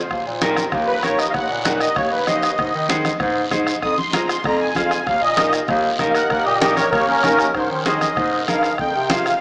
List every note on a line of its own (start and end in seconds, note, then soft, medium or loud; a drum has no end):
0.10 0.23 D#2 medium
0.10 bombo low medium
0.10 bombo rim medium
0.10 high conga soft
0.10 long guiro medium
0.26 0.63 A#2 medium
0.42 0.63 D#4 medium
0.42 0.64 G4 medium
0.42 0.64 A#4 loud
0.42 bombo rim medium
0.42 high conga loud
0.42 short guiro medium
0.56 bombo rim medium
0.56 high conga medium
0.56 short guiro medium
0.72 0.97 D#2 loud
0.72 bombo low medium
0.72 bombo rim medium
0.72 high conga soft
0.72 low conga medium
0.72 long guiro medium
0.87 1.03 B4 loud
1.03 1.28 D#2 medium
1.03 1.25 D#4 medium
1.03 1.25 G4 medium
1.03 1.26 A#4 medium
1.03 1.18 C#5 medium
1.03 bombo rim medium
1.03 high conga medium
1.03 short guiro medium
1.18 1.34 D#5 medium
1.18 bombo rim medium
1.18 short guiro medium
1.30 1.32 F5 medium
1.34 1.47 D#2 medium
1.34 1.80 F#5 medium
1.34 bombo low medium
1.34 bombo rim medium
1.34 high conga soft
1.34 low conga medium
1.34 long guiro medium
1.50 1.87 A#2 medium
1.65 1.87 D#4 medium
1.65 1.87 G4 medium
1.65 1.88 A#4 medium
1.65 bombo rim medium
1.65 high conga loud
1.65 short guiro medium
1.80 1.96 D#5 loud
1.80 bombo rim medium
1.80 short guiro medium
1.96 2.21 D#2 loud
1.96 2.11 C#5 medium
1.96 bombo low loud
1.96 bombo rim medium
1.96 high conga soft
1.96 low conga medium
1.96 long guiro medium
2.11 2.27 B4 medium
2.27 2.52 D#2 medium
2.27 2.49 D#4 medium
2.27 2.49 G4 medium
2.27 2.50 C5 medium
2.27 2.87 D#5 medium
2.27 bombo rim medium
2.27 high conga medium
2.27 short guiro medium
2.43 bombo rim medium
2.43 short guiro medium
2.58 2.71 G#2 medium
2.58 bombo low medium
2.58 bombo rim medium
2.58 high conga soft
2.58 low conga medium
2.58 long guiro medium
2.74 3.11 D#3 medium
2.89 3.11 D#4 loud
2.89 3.11 G#4 medium
2.89 3.11 C5 loud
2.89 bombo rim medium
2.89 high conga loud
2.89 short guiro medium
3.05 bombo rim medium
3.05 high conga medium
3.05 short guiro medium
3.20 3.45 G#2 loud
3.20 bombo low medium
3.20 bombo rim medium
3.20 high conga soft
3.20 low conga medium
3.20 long guiro medium
3.51 3.76 G#2 medium
3.51 3.73 D#4 medium
3.51 3.73 G#4 medium
3.51 3.74 C5 medium
3.51 bombo rim medium
3.51 high conga medium
3.51 low conga medium
3.51 short guiro medium
3.67 bombo rim medium
3.67 short guiro medium
3.82 3.95 F2 loud
3.82 3.97 D#6 medium
3.82 bombo low medium
3.82 bombo rim medium
3.82 high conga soft
3.82 long guiro medium
3.98 4.13 C6 loud
3.98 high conga medium
4.13 4.35 F4 medium
4.13 4.35 G#4 medium
4.13 4.36 C5 medium
4.13 4.28 A#5 medium
4.13 bombo rim medium
4.13 high conga loud
4.13 short guiro medium
4.28 4.44 C6 medium
4.28 bombo rim medium
4.28 short guiro medium
4.44 4.70 F2 loud
4.44 4.60 A#5 medium
4.44 bombo low medium
4.44 bombo rim medium
4.44 high conga soft
4.44 low conga medium
4.44 long guiro medium
4.60 4.75 G#5 medium
4.75 5.01 F2 medium
4.75 4.97 F4 medium
4.75 4.98 G#4 medium
4.75 4.98 C5 medium
4.75 4.91 F5 medium
4.75 bombo low medium
4.75 bombo rim medium
4.75 high conga medium
4.75 short guiro medium
4.90 5.06 G#5 medium
4.90 bombo rim medium
4.90 short guiro medium
5.06 5.19 D#2 loud
5.06 5.21 F5 medium
5.06 bombo low medium
5.06 bombo rim medium
5.06 high conga soft
5.06 low conga medium
5.06 long guiro medium
5.22 5.60 A#2 medium
5.22 5.52 D#5 loud
5.37 5.59 D#4 medium
5.37 5.60 G4 medium
5.37 5.60 A#4 medium
5.37 bombo rim medium
5.37 high conga loud
5.37 short guiro medium
5.53 bombo rim medium
5.53 short guiro medium
5.68 5.93 D#2 loud
5.68 bombo low medium
5.68 bombo rim medium
5.68 high conga soft
5.68 low conga medium
5.68 long guiro medium
5.99 6.24 D#2 medium
5.99 6.21 D#4 medium
5.99 6.22 G4 medium
5.99 6.22 A#4 loud
5.99 bombo rim medium
5.99 high conga medium
5.99 low conga medium
5.99 short guiro medium
6.10 6.28 A#4 loud
6.10 6.13 F5 medium
6.14 6.28 F#5 loud
6.14 bombo rim medium
6.14 short guiro medium
6.29 6.43 D#2 loud
6.29 6.44 A#4 medium
6.29 6.45 F#5 medium
6.29 bombo low medium
6.29 bombo rim medium
6.29 high conga soft
6.29 low conga medium
6.29 long guiro medium
6.44 6.83 A#2 medium
6.44 6.59 G4 medium
6.44 6.59 D#5 loud
6.60 6.83 D#4 medium
6.60 6.75 G4 medium
6.60 6.83 G4 medium
6.60 6.84 A#4 medium
6.60 6.76 D#5 medium
6.60 bombo rim medium
6.60 high conga loud
6.60 short guiro medium
6.76 6.89 A#4 medium
6.76 6.90 C#5 loud
6.76 bombo rim medium
6.76 high conga medium
6.76 short guiro medium
6.91 7.17 D#2 loud
6.91 7.05 A#4 medium
6.91 7.07 C#5 loud
6.91 bombo low loud
6.91 bombo rim medium
6.91 high conga soft
6.91 low conga medium
6.91 long guiro medium
7.07 7.51 C#4 medium
7.07 7.53 A#4 loud
7.23 7.49 D#2 medium
7.23 7.46 D#4 medium
7.23 7.46 G4 medium
7.23 7.46 A#4 medium
7.23 bombo rim medium
7.23 high conga medium
7.23 low conga medium
7.23 short guiro medium
7.39 bombo rim medium
7.39 short guiro medium
7.55 7.67 G#2 loud
7.55 7.84 C5 medium
7.55 bombo low medium
7.55 bombo rim medium
7.55 high conga soft
7.55 long guiro medium
7.70 8.08 D#3 medium
7.85 8.07 D#4 medium
7.85 8.08 G#4 medium
7.85 8.08 C5 medium
7.85 8.44 D#5 medium
7.85 bombo rim medium
7.85 high conga loud
7.85 short guiro medium
8.01 bombo rim medium
8.01 high conga medium
8.01 short guiro medium
8.17 8.42 G#2 loud
8.17 bombo low medium
8.17 bombo rim medium
8.17 high conga soft
8.17 low conga medium
8.17 long guiro medium
8.48 8.73 G2 medium
8.48 8.70 D#4 medium
8.48 8.70 G#4 medium
8.48 8.70 A#4 medium
8.48 8.77 F5 loud
8.48 bombo rim medium
8.48 high conga medium
8.48 short guiro medium
8.63 bombo rim medium
8.63 short guiro medium
8.78 8.91 F2 medium
8.78 9.11 G5 medium
8.78 bombo low medium
8.78 bombo rim medium
8.78 high conga soft
8.78 low conga medium
8.78 long guiro medium
8.95 9.32 C3 loud
9.10 9.32 F4 medium
9.10 9.32 G#4 medium
9.10 9.32 C5 medium
9.10 9.41 F5 medium
9.10 bombo rim medium
9.10 high conga loud
9.10 short guiro medium
9.26 bombo rim medium
9.26 short guiro medium